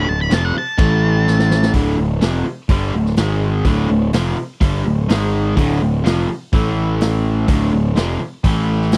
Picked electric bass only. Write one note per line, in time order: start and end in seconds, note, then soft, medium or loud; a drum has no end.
0.08 0.30 D1 medium
0.31 0.53 F1 loud
0.55 muted picked electric bass stroke soft
0.79 1.70 A1 loud
1.74 1.96 D1 medium
1.98 2.20 D1 medium
2.22 2.44 F1 medium
2.46 muted picked electric bass stroke soft
2.69 2.91 G1 medium
2.94 3.16 D1 medium
3.17 3.62 G#1 loud
3.65 3.87 D1 medium
3.89 4.12 D1 medium
4.13 4.35 F1 medium
4.37 muted picked electric bass stroke soft
4.61 4.83 G1 medium
4.85 5.07 D1 medium
5.09 5.54 G#1 medium
5.57 5.79 D1 medium
5.81 6.03 D1 medium
6.05 6.27 F1 medium
6.29 muted picked electric bass stroke soft
6.53 7.45 A1 medium
7.49 7.71 D1 medium
7.73 7.95 D1 medium
7.97 8.19 F1 medium
8.21 muted picked electric bass stroke soft
8.44 8.98 A1 medium